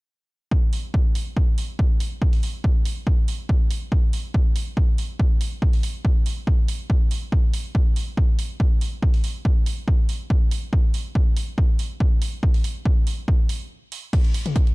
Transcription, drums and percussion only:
0.51 kick loud
0.73 open hi-hat loud
0.94 kick loud
1.15 open hi-hat loud
1.37 kick loud
1.58 open hi-hat loud
1.79 kick loud
2.00 open hi-hat loud
2.22 kick loud
2.33 open hi-hat medium
2.43 open hi-hat loud
2.64 kick loud
2.85 open hi-hat loud
3.07 kick loud
3.28 open hi-hat loud
3.49 kick loud
3.71 open hi-hat loud
3.92 kick loud
4.13 open hi-hat loud
4.34 kick loud
4.56 open hi-hat loud
4.77 kick loud
4.98 open hi-hat loud
5.20 kick loud
5.41 open hi-hat loud
5.62 kick loud
5.73 open hi-hat medium
5.83 open hi-hat loud
6.05 kick loud
6.26 open hi-hat loud
6.47 kick loud
6.68 open hi-hat loud
6.90 kick loud
7.11 open hi-hat loud
7.32 kick loud
7.54 open hi-hat loud
7.75 kick loud
7.96 open hi-hat loud
8.17 kick loud
8.39 open hi-hat loud
8.60 kick loud
8.81 open hi-hat loud
9.02 kick loud
9.14 open hi-hat medium
9.24 open hi-hat loud
9.45 kick loud
9.66 open hi-hat medium
9.88 kick loud
10.09 open hi-hat loud
10.30 kick loud
10.51 open hi-hat loud
10.73 kick loud
10.94 open hi-hat loud
11.15 kick loud
11.37 open hi-hat loud
11.58 kick loud
11.79 open hi-hat loud
12.00 kick loud
12.22 open hi-hat loud
12.43 kick loud
12.54 open hi-hat medium
12.64 open hi-hat loud
12.85 kick loud
13.07 open hi-hat loud
13.28 kick loud
13.49 open hi-hat loud
13.92 open hi-hat loud
14.13 kick loud
14.13 closed hi-hat medium
14.13 crash medium
14.24 closed hi-hat medium
14.34 open hi-hat loud
14.46 closed hi-hat medium
14.46 mid tom medium
14.56 kick loud
14.56 closed hi-hat medium
14.67 closed hi-hat medium

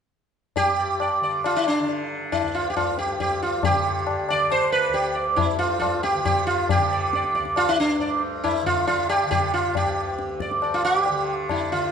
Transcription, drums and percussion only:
0.56 tabla tin loud
0.56 tabla ge medium
1.00 tabla na medium
1.44 tabla na medium
1.67 tabla na medium
1.89 tabla tin medium
2.32 tabla na medium
2.32 tabla ge medium
2.77 tabla na medium
2.77 tabla ge medium
2.98 tabla te medium
3.20 tabla tin medium
3.20 tabla ge medium
3.63 tabla tin medium
3.63 tabla ge medium
4.07 tabla na medium
4.29 tabla na medium
4.51 tabla na medium
4.94 tabla tin medium
5.38 tabla na medium
5.38 tabla ge medium
5.82 tabla na medium
5.82 tabla ge medium
6.04 tabla te medium
6.26 tabla tin medium
6.26 tabla ge medium
6.69 tabla tin medium
6.69 tabla ge medium
7.13 tabla te medium
7.24 tabla te soft
7.35 tabla ke medium
7.45 tabla te medium
7.56 tabla na medium
8.00 tabla tin medium
8.44 tabla na medium
8.44 tabla ge medium
8.67 tabla ge soft
8.87 tabla tin medium
8.87 tabla ge medium
9.10 tabla na medium
9.32 tabla tin medium
9.32 tabla ge medium
9.75 tabla tin loud
9.75 tabla ge medium
10.19 tabla te medium
10.30 tabla te soft
10.40 tabla ke medium
10.51 tabla te medium
10.62 tabla na medium
11.06 tabla tin medium
11.49 tabla na medium
11.49 tabla ge medium

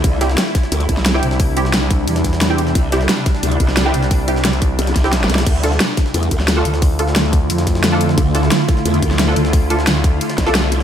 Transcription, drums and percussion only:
0.04 kick loud
0.04 closed hi-hat medium
0.04 ride medium
0.21 snare medium
0.21 closed hi-hat medium
0.21 ride medium
0.30 snare soft
0.38 snare loud
0.38 closed hi-hat medium
0.38 ride medium
0.55 kick loud
0.55 snare soft
0.55 closed hi-hat medium
0.55 ride medium
0.63 snare soft
0.72 closed hi-hat medium
0.72 ride medium
0.80 closed hi-hat soft
0.89 kick medium
0.89 closed hi-hat medium
0.89 ride medium
0.97 snare soft
1.06 snare loud
1.06 closed hi-hat medium
1.06 ride medium
1.23 closed hi-hat medium
1.23 ride medium
1.31 snare medium
1.40 kick loud
1.40 closed hi-hat medium
1.40 open hi-hat medium
1.57 closed hi-hat medium
1.57 ride medium
1.65 snare soft
1.74 snare loud
1.74 closed hi-hat medium
1.74 ride medium
1.91 kick loud
1.91 closed hi-hat medium
1.91 ride medium
2.08 closed hi-hat medium
2.08 ride medium
2.16 snare medium
2.16 closed hi-hat soft
2.24 kick medium
2.24 snare soft
2.24 closed hi-hat medium
2.24 ride medium
2.33 snare medium
2.41 snare loud
2.41 closed hi-hat medium
2.41 ride medium
2.58 closed hi-hat medium
2.58 ride medium
2.67 snare soft
2.75 kick loud
2.75 closed hi-hat medium
2.75 ride medium
2.92 snare medium
2.92 closed hi-hat medium
2.92 ride medium
3.01 snare soft
3.09 snare loud
3.09 closed hi-hat medium
3.09 ride medium
3.26 kick loud
3.26 snare soft
3.26 closed hi-hat medium
3.26 ride medium
3.35 snare soft
3.43 closed hi-hat loud
3.43 ride medium
3.52 closed hi-hat soft
3.60 kick medium
3.60 closed hi-hat medium
3.60 ride medium
3.68 snare soft
3.68 snare medium
3.77 snare loud
3.77 closed hi-hat medium
3.77 ride medium
3.94 closed hi-hat medium
3.94 ride medium
4.03 snare medium
4.11 kick loud
4.11 closed hi-hat medium
4.11 open hi-hat medium
4.28 closed hi-hat medium
4.28 ride medium
4.36 snare soft
4.45 snare loud
4.45 closed hi-hat loud
4.45 ride medium
4.53 closed hi-hat soft
4.62 kick loud
4.62 closed hi-hat medium
4.62 ride medium
4.79 closed hi-hat loud
4.79 ride medium
4.87 snare medium
4.87 closed hi-hat soft
4.96 kick medium
4.96 snare soft
4.96 closed hi-hat medium
4.96 ride medium
5.04 snare medium
5.13 snare medium
5.13 snare loud
5.13 closed hi-hat medium
5.13 ride medium
5.24 snare medium
5.30 snare soft
5.30 closed hi-hat medium
5.30 ride medium
5.35 snare loud
5.38 snare loud
5.38 ride medium
5.47 kick loud
5.47 closed hi-hat medium
5.47 ride medium
5.47 crash medium
5.63 snare medium
5.63 closed hi-hat medium
5.63 ride medium
5.72 snare soft
5.80 snare loud
5.80 closed hi-hat loud
5.80 ride medium
5.97 kick loud
5.97 snare soft
5.97 closed hi-hat medium
5.97 ride medium
6.06 snare soft
6.14 closed hi-hat loud
6.14 ride medium
6.23 closed hi-hat soft
6.31 kick medium
6.31 closed hi-hat medium
6.31 ride medium
6.40 snare soft
6.40 snare medium
6.48 snare loud
6.48 closed hi-hat loud
6.48 ride medium
6.65 closed hi-hat medium
6.65 ride medium
6.74 snare medium
6.82 kick loud
6.82 closed hi-hat medium
6.82 open hi-hat medium
6.99 closed hi-hat medium
6.99 ride medium
7.08 snare soft
7.16 snare loud
7.16 closed hi-hat medium
7.16 ride medium
7.33 kick loud
7.33 closed hi-hat medium
7.33 ride medium
7.50 closed hi-hat loud
7.50 ride medium
7.58 snare soft
7.58 closed hi-hat soft
7.67 kick medium
7.67 snare soft
7.67 closed hi-hat medium
7.67 ride medium
7.75 snare medium
7.84 snare loud
7.84 closed hi-hat loud
7.84 ride medium
8.01 closed hi-hat medium
8.01 ride medium
8.09 snare soft
8.18 kick loud
8.18 closed hi-hat medium
8.18 ride medium
8.35 snare medium
8.35 closed hi-hat medium
8.35 ride medium
8.43 snare soft
8.52 snare loud
8.52 closed hi-hat loud
8.52 ride medium
8.69 kick loud
8.69 snare soft
8.69 closed hi-hat medium
8.69 ride medium
8.77 snare soft
8.86 closed hi-hat loud
8.86 ride medium
8.94 closed hi-hat soft
9.02 kick medium
9.02 closed hi-hat medium
9.02 ride medium
9.11 snare soft
9.19 snare loud
9.19 closed hi-hat medium
9.19 ride medium
9.36 closed hi-hat medium
9.36 ride medium
9.45 snare medium
9.53 kick loud
9.53 closed hi-hat medium
9.53 open hi-hat medium
9.70 closed hi-hat medium
9.70 ride medium
9.79 snare soft
9.87 snare loud
9.87 closed hi-hat medium
9.87 ride medium
10.04 kick loud
10.04 closed hi-hat medium
10.04 ride medium
10.21 closed hi-hat medium
10.21 ride medium
10.30 snare medium
10.30 closed hi-hat soft
10.38 kick medium
10.38 snare soft
10.38 closed hi-hat medium
10.38 ride medium
10.47 snare medium
10.55 snare loud
10.55 closed hi-hat medium
10.55 ride medium
10.72 closed hi-hat medium
10.72 ride medium

